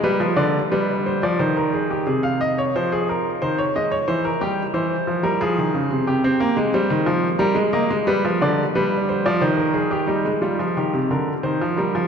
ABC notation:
X:1
M:3/4
L:1/16
Q:1/4=89
K:Fm
V:1 name="Grand piano"
=B2 =d2 B2 c d c _B A G | A f e d c A B2 c d e d | c B G2 c3 B A4 | G4 c4 B2 e2 |
=B2 =d2 B2 c d c _B A G | E2 F2 G2 B2 c2 B2 |]
V:2 name="Grand piano" clef=bass
G, F, =D,2 G,3 F, E,4 | C,4 F,4 E,2 A,2 | =E,2 G,2 E,2 F, G, F, _E, D, C, | C, C B, A, G, E, F,2 G, A, B, A, |
G, F, =D,2 G,3 F, E,4 | G, A, G, F, E, C, =D,2 E, F, G, F, |]